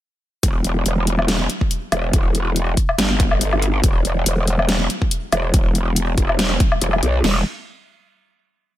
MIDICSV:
0, 0, Header, 1, 3, 480
1, 0, Start_track
1, 0, Key_signature, 1, "minor"
1, 0, Tempo, 425532
1, 487, Time_signature, 4, 2, 24, 8
1, 9898, End_track
2, 0, Start_track
2, 0, Title_t, "Wobble bass"
2, 0, Program_c, 0, 39
2, 488, Note_on_c, 0, 28, 100
2, 710, Note_off_c, 0, 28, 0
2, 728, Note_on_c, 0, 28, 98
2, 950, Note_off_c, 0, 28, 0
2, 969, Note_on_c, 0, 28, 99
2, 1671, Note_off_c, 0, 28, 0
2, 2167, Note_on_c, 0, 28, 99
2, 2390, Note_off_c, 0, 28, 0
2, 2409, Note_on_c, 0, 28, 99
2, 3111, Note_off_c, 0, 28, 0
2, 3367, Note_on_c, 0, 31, 96
2, 4310, Note_off_c, 0, 31, 0
2, 4327, Note_on_c, 0, 28, 100
2, 4550, Note_off_c, 0, 28, 0
2, 4567, Note_on_c, 0, 28, 94
2, 4790, Note_off_c, 0, 28, 0
2, 4807, Note_on_c, 0, 28, 99
2, 5510, Note_off_c, 0, 28, 0
2, 6006, Note_on_c, 0, 28, 101
2, 6229, Note_off_c, 0, 28, 0
2, 6248, Note_on_c, 0, 28, 101
2, 6950, Note_off_c, 0, 28, 0
2, 6967, Note_on_c, 0, 28, 99
2, 7430, Note_off_c, 0, 28, 0
2, 7687, Note_on_c, 0, 28, 102
2, 7910, Note_off_c, 0, 28, 0
2, 7927, Note_on_c, 0, 35, 99
2, 8150, Note_off_c, 0, 35, 0
2, 8168, Note_on_c, 0, 28, 95
2, 8391, Note_off_c, 0, 28, 0
2, 9898, End_track
3, 0, Start_track
3, 0, Title_t, "Drums"
3, 488, Note_on_c, 9, 36, 120
3, 488, Note_on_c, 9, 42, 85
3, 601, Note_off_c, 9, 36, 0
3, 601, Note_off_c, 9, 42, 0
3, 727, Note_on_c, 9, 42, 55
3, 840, Note_off_c, 9, 42, 0
3, 967, Note_on_c, 9, 42, 88
3, 1080, Note_off_c, 9, 42, 0
3, 1208, Note_on_c, 9, 42, 55
3, 1321, Note_off_c, 9, 42, 0
3, 1339, Note_on_c, 9, 77, 52
3, 1448, Note_on_c, 9, 38, 119
3, 1448, Note_on_c, 9, 42, 80
3, 1452, Note_off_c, 9, 77, 0
3, 1561, Note_off_c, 9, 38, 0
3, 1561, Note_off_c, 9, 42, 0
3, 1687, Note_on_c, 9, 42, 60
3, 1800, Note_off_c, 9, 42, 0
3, 1819, Note_on_c, 9, 36, 63
3, 1927, Note_on_c, 9, 42, 87
3, 1932, Note_off_c, 9, 36, 0
3, 2040, Note_off_c, 9, 42, 0
3, 2167, Note_on_c, 9, 42, 58
3, 2167, Note_on_c, 9, 77, 84
3, 2280, Note_off_c, 9, 42, 0
3, 2280, Note_off_c, 9, 77, 0
3, 2407, Note_on_c, 9, 42, 81
3, 2408, Note_on_c, 9, 36, 127
3, 2520, Note_off_c, 9, 42, 0
3, 2521, Note_off_c, 9, 36, 0
3, 2648, Note_on_c, 9, 42, 56
3, 2761, Note_off_c, 9, 42, 0
3, 2887, Note_on_c, 9, 42, 87
3, 3000, Note_off_c, 9, 42, 0
3, 3127, Note_on_c, 9, 42, 55
3, 3128, Note_on_c, 9, 36, 63
3, 3240, Note_off_c, 9, 42, 0
3, 3241, Note_off_c, 9, 36, 0
3, 3259, Note_on_c, 9, 77, 50
3, 3367, Note_on_c, 9, 38, 127
3, 3367, Note_on_c, 9, 42, 85
3, 3372, Note_off_c, 9, 77, 0
3, 3480, Note_off_c, 9, 38, 0
3, 3480, Note_off_c, 9, 42, 0
3, 3608, Note_on_c, 9, 36, 112
3, 3608, Note_on_c, 9, 42, 56
3, 3720, Note_off_c, 9, 42, 0
3, 3721, Note_off_c, 9, 36, 0
3, 3739, Note_on_c, 9, 77, 52
3, 3847, Note_on_c, 9, 42, 84
3, 3852, Note_off_c, 9, 77, 0
3, 3960, Note_off_c, 9, 42, 0
3, 3978, Note_on_c, 9, 77, 53
3, 4087, Note_on_c, 9, 42, 58
3, 4091, Note_off_c, 9, 77, 0
3, 4200, Note_off_c, 9, 42, 0
3, 4327, Note_on_c, 9, 42, 83
3, 4328, Note_on_c, 9, 36, 127
3, 4440, Note_off_c, 9, 36, 0
3, 4440, Note_off_c, 9, 42, 0
3, 4567, Note_on_c, 9, 42, 56
3, 4680, Note_off_c, 9, 42, 0
3, 4807, Note_on_c, 9, 42, 87
3, 4920, Note_off_c, 9, 42, 0
3, 5048, Note_on_c, 9, 42, 54
3, 5160, Note_off_c, 9, 42, 0
3, 5178, Note_on_c, 9, 77, 52
3, 5286, Note_on_c, 9, 38, 127
3, 5286, Note_on_c, 9, 42, 84
3, 5291, Note_off_c, 9, 77, 0
3, 5399, Note_off_c, 9, 38, 0
3, 5399, Note_off_c, 9, 42, 0
3, 5527, Note_on_c, 9, 42, 57
3, 5640, Note_off_c, 9, 42, 0
3, 5659, Note_on_c, 9, 36, 66
3, 5767, Note_on_c, 9, 42, 82
3, 5771, Note_off_c, 9, 36, 0
3, 5880, Note_off_c, 9, 42, 0
3, 6006, Note_on_c, 9, 42, 56
3, 6006, Note_on_c, 9, 77, 79
3, 6119, Note_off_c, 9, 42, 0
3, 6119, Note_off_c, 9, 77, 0
3, 6246, Note_on_c, 9, 42, 79
3, 6247, Note_on_c, 9, 36, 127
3, 6359, Note_off_c, 9, 42, 0
3, 6360, Note_off_c, 9, 36, 0
3, 6487, Note_on_c, 9, 42, 52
3, 6599, Note_off_c, 9, 42, 0
3, 6727, Note_on_c, 9, 42, 86
3, 6840, Note_off_c, 9, 42, 0
3, 6966, Note_on_c, 9, 42, 52
3, 6967, Note_on_c, 9, 36, 66
3, 7079, Note_off_c, 9, 42, 0
3, 7080, Note_off_c, 9, 36, 0
3, 7098, Note_on_c, 9, 77, 52
3, 7207, Note_on_c, 9, 38, 127
3, 7207, Note_on_c, 9, 42, 78
3, 7211, Note_off_c, 9, 77, 0
3, 7320, Note_off_c, 9, 38, 0
3, 7320, Note_off_c, 9, 42, 0
3, 7446, Note_on_c, 9, 42, 55
3, 7448, Note_on_c, 9, 36, 116
3, 7559, Note_off_c, 9, 42, 0
3, 7560, Note_off_c, 9, 36, 0
3, 7578, Note_on_c, 9, 77, 55
3, 7687, Note_on_c, 9, 42, 81
3, 7691, Note_off_c, 9, 77, 0
3, 7800, Note_off_c, 9, 42, 0
3, 7818, Note_on_c, 9, 77, 53
3, 7927, Note_on_c, 9, 42, 54
3, 7931, Note_off_c, 9, 77, 0
3, 8040, Note_off_c, 9, 42, 0
3, 8168, Note_on_c, 9, 38, 111
3, 8168, Note_on_c, 9, 49, 96
3, 8281, Note_off_c, 9, 38, 0
3, 8281, Note_off_c, 9, 49, 0
3, 9898, End_track
0, 0, End_of_file